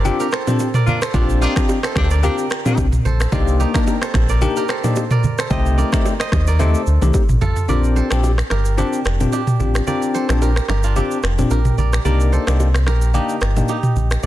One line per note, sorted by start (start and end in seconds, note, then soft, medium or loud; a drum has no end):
0.00 0.11 G1 loud
0.00 0.47 F4 medium
0.00 0.20 G4 medium
0.00 0.20 A#4 medium
0.00 0.32 C5 medium
0.00 0.74 D5 medium
0.05 0.26 C4 loud
0.05 0.26 D4 medium
0.05 0.26 F4 medium
0.05 0.26 G4 loud
0.05 low conga medium
0.05 shaker medium
0.20 1.41 G4 medium
0.20 0.39 A#4 medium
0.20 shaker medium
0.32 0.81 A4 medium
0.32 1.01 C5 medium
0.32 finger snap medium
0.32 cross-stick loud
0.32 shaker soft
0.47 0.67 C4 medium
0.47 0.67 D4 medium
0.47 0.67 F4 medium
0.47 0.67 G4 medium
0.47 mid tom medium
0.47 low bongo medium
0.47 shaker medium
0.59 high bongo medium
0.59 shaker medium
0.74 1.09 A#4 medium
0.74 1.48 D5 medium
0.74 mid tom medium
0.74 shaker medium
0.87 0.99 A#3 medium
0.87 0.99 D4 medium
0.87 0.99 F4 medium
0.87 low conga medium
0.87 shaker soft
1.02 1.84 A4 medium
1.02 1.83 C5 medium
1.02 finger snap medium
1.02 cross-stick loud
1.02 shaker medium
1.14 1.47 A#1 loud
1.14 1.53 C4 medium
1.14 1.53 D4 medium
1.14 1.48 D4 medium
1.14 2.66 F4 loud
1.14 1.53 F4 medium
1.14 1.53 G4 loud
1.14 kick loud
1.14 low conga medium
1.14 shaker medium
1.29 shaker medium
1.42 1.54 A#3 medium
1.42 1.53 D4 medium
1.42 2.17 D#4 medium
1.42 1.54 F4 loud
1.42 2.24 G4 medium
1.42 low bongo medium
1.42 shaker medium
1.56 1.76 C4 medium
1.56 1.76 D4 medium
1.56 1.76 F4 medium
1.56 1.76 G4 medium
1.56 finger snap medium
1.56 kick loud
1.56 cross-stick loud
1.56 low bongo medium
1.56 shaker medium
1.69 high bongo medium
1.69 shaker medium
1.83 2.18 A4 medium
1.83 3.03 C5 medium
1.83 finger snap medium
1.83 cross-stick medium
1.83 shaker medium
1.96 2.29 D2 medium
1.96 2.08 A#3 medium
1.96 2.08 D4 medium
1.96 2.08 G4 medium
1.96 finger snap medium
1.96 kick medium
1.96 cross-stick medium
1.96 high bongo medium
1.96 low bongo medium
1.96 shaker soft
2.11 2.23 A#4 medium
2.11 3.22 D5 medium
2.11 shaker loud
2.23 2.35 A#3 medium
2.23 2.44 C4 loud
2.23 2.44 D4 medium
2.23 2.35 D4 medium
2.23 2.44 F4 medium
2.23 2.35 G4 loud
2.23 2.45 G4 loud
2.23 3.59 G4 medium
2.23 3.12 A#4 medium
2.23 low conga medium
2.23 shaker medium
2.38 shaker medium
2.50 finger snap medium
2.50 cross-stick medium
2.50 shaker soft
2.65 2.76 A#3 medium
2.65 2.85 C4 medium
2.65 2.85 D4 medium
2.65 2.76 D4 medium
2.65 2.85 F4 medium
2.65 2.75 F4 medium
2.65 2.85 G4 medium
2.65 mid tom medium
2.65 low bongo medium
2.65 shaker medium
2.78 2.99 C2 loud
2.78 kick loud
2.78 high bongo medium
2.78 shaker medium
2.92 mid tom medium
2.92 shaker medium
3.05 3.27 A#1 loud
3.05 3.81 A4 medium
3.05 4.02 C5 medium
3.05 low conga medium
3.05 shaker soft
3.20 finger snap medium
3.20 cross-stick medium
3.20 shaker medium
3.32 3.65 C2 loud
3.32 3.71 A#3 medium
3.32 5.13 C4 medium
3.32 3.71 D4 medium
3.32 3.71 D#4 medium
3.32 4.84 F4 medium
3.32 3.71 G4 loud
3.32 kick loud
3.32 low conga medium
3.32 shaker medium
3.48 shaker medium
3.60 4.35 D#4 medium
3.60 3.75 G4 medium
3.60 low bongo medium
3.60 shaker medium
3.74 3.94 A#3 medium
3.74 3.95 D4 medium
3.74 3.95 D#4 medium
3.74 3.95 G4 medium
3.74 4.57 G4 medium
3.74 4.09 A#4 medium
3.74 finger snap medium
3.74 kick loud
3.74 cross-stick loud
3.74 low bongo medium
3.74 shaker medium
3.87 high bongo medium
3.87 shaker medium
4.02 4.36 A4 medium
4.02 4.68 C5 medium
4.02 finger snap medium
4.02 cross-stick medium
4.02 shaker medium
4.14 4.47 A#1 medium
4.14 finger snap medium
4.14 kick medium
4.14 cross-stick medium
4.14 high bongo medium
4.14 low bongo medium
4.14 shaker soft
4.29 4.56 A#4 medium
4.29 5.11 D5 medium
4.29 shaker medium
4.41 4.63 A#3 loud
4.41 4.63 D4 medium
4.41 4.63 D#4 medium
4.41 4.63 G4 loud
4.41 low conga medium
4.41 shaker medium
4.56 5.99 G4 medium
4.56 4.76 A#4 medium
4.56 shaker medium
4.68 5.18 A4 medium
4.68 5.38 C5 medium
4.68 finger snap medium
4.68 cross-stick loud
4.68 shaker soft
4.84 5.03 A#3 medium
4.84 5.03 D4 medium
4.84 5.04 D#4 medium
4.84 5.04 G4 medium
4.84 mid tom medium
4.84 low bongo medium
4.84 shaker medium
4.96 high bongo medium
4.96 shaker medium
5.11 5.45 A#4 medium
5.11 5.57 D5 medium
5.11 mid tom medium
5.11 shaker medium
5.24 low conga medium
5.24 shaker soft
5.38 5.85 A4 medium
5.38 5.51 C5 medium
5.38 finger snap medium
5.38 cross-stick medium
5.38 shaker medium
5.50 5.84 C2 loud
5.50 5.89 A3 medium
5.50 5.89 C4 medium
5.50 5.89 D#4 medium
5.50 5.89 G4 loud
5.50 6.20 C5 medium
5.50 5.84 D#5 loud
5.50 kick loud
5.50 low conga medium
5.50 shaker medium
5.66 shaker medium
5.78 6.48 A#4 medium
5.78 6.26 D5 medium
5.78 low bongo medium
5.78 shaker medium
5.92 6.12 A3 medium
5.92 6.12 C4 medium
5.92 6.13 D#4 medium
5.92 6.13 G4 medium
5.92 finger snap medium
5.92 kick loud
5.92 cross-stick medium
5.92 low bongo medium
5.92 shaker medium
6.05 high bongo medium
6.05 shaker medium
6.20 6.59 C5 medium
6.20 6.54 D#5 medium
6.20 finger snap medium
6.20 cross-stick medium
6.20 shaker medium
6.32 6.75 D#2 medium
6.32 finger snap medium
6.32 kick loud
6.32 cross-stick medium
6.32 high bongo medium
6.32 low bongo medium
6.32 shaker soft
6.47 6.66 A#4 medium
6.47 7.58 D5 medium
6.47 shaker loud
6.59 6.81 A3 medium
6.59 6.81 C4 medium
6.59 6.81 D#4 medium
6.59 6.81 G4 loud
6.59 7.41 A4 medium
6.59 7.78 C5 medium
6.59 high tom medium
6.59 low conga medium
6.59 shaker medium
6.75 shaker medium
6.86 6.99 D2 medium
6.86 shaker soft
7.02 7.12 C2 medium
7.02 7.22 A3 medium
7.02 7.22 C4 medium
7.02 7.22 D#4 medium
7.02 7.22 G4 medium
7.02 mid tom medium
7.02 low bongo medium
7.02 shaker medium
7.14 kick loud
7.14 high bongo medium
7.14 shaker medium
7.29 7.39 A1 medium
7.29 mid tom medium
7.29 shaker medium
7.41 7.53 A1 medium
7.41 8.94 F4 medium
7.41 7.76 A4 medium
7.41 floor tom loud
7.41 low conga medium
7.41 shaker soft
7.56 floor tom medium
7.56 shaker medium
7.68 8.02 A#1 loud
7.68 8.07 C4 medium
7.68 8.07 D4 medium
7.68 8.07 F4 medium
7.68 8.08 G4 loud
7.68 8.03 A#4 medium
7.68 8.80 D5 medium
7.68 low conga medium
7.68 shaker medium
7.84 shaker medium
7.96 8.57 A4 medium
7.96 9.15 C5 medium
7.96 low bongo medium
7.96 shaker medium
8.11 8.42 A#1 loud
8.11 8.31 C4 medium
8.11 8.31 D4 medium
8.11 8.31 F4 medium
8.11 8.31 G4 medium
8.11 finger snap medium
8.11 cross-stick loud
8.11 low bongo medium
8.11 shaker medium
8.24 high bongo medium
8.24 shaker medium
8.38 finger snap medium
8.38 cross-stick medium
8.38 shaker medium
8.50 8.84 G1 loud
8.50 8.78 G4 medium
8.50 9.78 A#4 medium
8.50 finger snap medium
8.50 cross-stick medium
8.50 low bongo medium
8.50 shaker soft
8.65 shaker medium
8.78 8.99 C4 loud
8.78 8.99 D4 medium
8.78 9.33 D4 medium
8.78 8.99 F4 medium
8.78 9.32 G4 medium
8.78 8.99 G4 loud
8.78 low conga medium
8.78 shaker medium
8.93 shaker medium
9.05 9.27 F1 medium
9.05 finger snap medium
9.05 cross-stick medium
9.05 shaker soft
9.20 9.40 C4 medium
9.20 9.40 D4 medium
9.20 9.40 F4 medium
9.20 9.40 G4 medium
9.20 mid tom medium
9.20 low bongo medium
9.20 shaker medium
9.32 10.84 D4 medium
9.32 10.42 G4 medium
9.32 high bongo medium
9.32 shaker medium
9.47 mid tom medium
9.47 shaker medium
9.60 9.81 A1 loud
9.60 9.81 C4 medium
9.60 9.81 D4 medium
9.60 9.81 F4 medium
9.60 9.81 G4 medium
9.60 low conga medium
9.60 shaker soft
9.75 finger snap medium
9.75 cross-stick medium
9.75 shaker medium
9.87 10.26 C4 medium
9.87 10.26 D4 medium
9.87 10.26 F4 medium
9.87 10.26 G4 loud
9.87 10.21 A#4 medium
9.87 10.98 D5 loud
9.87 low conga medium
9.87 shaker medium
10.02 shaker medium
10.14 10.48 A4 medium
10.14 11.33 C5 medium
10.14 low bongo medium
10.14 shaker medium
10.29 10.60 A#1 loud
10.29 10.49 C4 medium
10.29 10.49 D4 medium
10.29 10.49 F4 medium
10.29 10.49 G4 medium
10.29 finger snap medium
10.29 cross-stick loud
10.29 low bongo medium
10.29 shaker medium
10.42 10.69 G4 medium
10.42 10.69 A#4 medium
10.42 high bongo medium
10.42 shaker medium
10.56 finger snap medium
10.56 cross-stick medium
10.56 shaker medium
10.68 11.02 G1 medium
10.68 10.96 G4 medium
10.68 11.50 A#4 medium
10.68 finger snap medium
10.68 cross-stick medium
10.68 low bongo medium
10.68 shaker soft
10.83 10.97 D4 medium
10.83 12.35 F4 medium
10.83 shaker medium
10.96 11.17 C4 medium
10.96 11.17 D4 medium
10.96 12.65 D4 medium
10.96 11.17 F4 medium
10.96 11.51 G4 medium
10.96 11.17 G4 loud
10.96 low conga medium
10.96 shaker medium
11.11 shaker medium
11.23 11.45 F1 medium
11.23 finger snap medium
11.23 cross-stick loud
11.23 shaker soft
11.38 11.58 C4 medium
11.38 11.58 D4 medium
11.38 11.58 F4 medium
11.38 11.58 G4 medium
11.38 mid tom medium
11.38 low bongo medium
11.38 shaker medium
11.50 11.72 A#1 loud
11.50 12.87 G4 medium
11.50 11.78 A#4 medium
11.50 high bongo medium
11.50 shaker medium
11.65 mid tom medium
11.65 shaker medium
11.78 11.99 A#1 loud
11.78 12.05 A#4 medium
11.78 12.05 D5 medium
11.78 low conga medium
11.78 shaker soft
11.93 finger snap medium
11.93 cross-stick medium
11.93 shaker medium
12.05 12.38 C2 loud
12.05 12.44 A#3 medium
12.05 12.44 D4 medium
12.05 12.44 D#4 medium
12.05 12.44 G4 loud
12.05 12.39 A#4 medium
12.05 13.21 D5 medium
12.05 low conga medium
12.05 shaker medium
12.20 shaker medium
12.32 12.93 A4 medium
12.32 13.51 C5 medium
12.32 low bongo medium
12.32 shaker medium
12.47 12.88 C2 loud
12.47 12.67 A#3 medium
12.47 12.67 D4 medium
12.47 12.67 D#4 medium
12.47 12.67 G4 medium
12.47 finger snap medium
12.47 cross-stick loud
12.47 low bongo medium
12.47 shaker medium
12.60 high bongo medium
12.60 shaker medium
12.74 finger snap medium
12.74 cross-stick medium
12.74 shaker medium
12.87 13.20 A#1 loud
12.87 13.14 G4 medium
12.87 14.14 A#4 medium
12.87 finger snap medium
12.87 cross-stick medium
12.87 low bongo medium
12.87 shaker soft
13.02 shaker medium
13.14 13.35 A#3 loud
13.14 13.35 D4 medium
13.14 13.35 D#4 medium
13.14 13.69 D#4 medium
13.14 13.68 G4 medium
13.14 13.35 G4 loud
13.14 low conga medium
13.14 shaker medium
13.29 shaker medium
13.41 13.63 G1 medium
13.41 finger snap medium
13.41 cross-stick loud
13.41 shaker soft
13.56 13.76 A#3 medium
13.56 13.76 D4 medium
13.56 13.76 D#4 medium
13.56 13.76 G4 medium
13.56 mid tom medium
13.56 low bongo medium
13.56 shaker medium
13.68 14.26 D#4 medium
13.68 14.26 G4 medium
13.68 high bongo medium
13.68 shaker medium
13.83 mid tom medium
13.83 shaker medium
13.96 14.17 A#1 loud
13.96 low conga medium
13.96 shaker soft
14.11 finger snap medium
14.11 cross-stick medium
14.11 shaker medium
14.23 14.26 C2 loud
14.23 shaker medium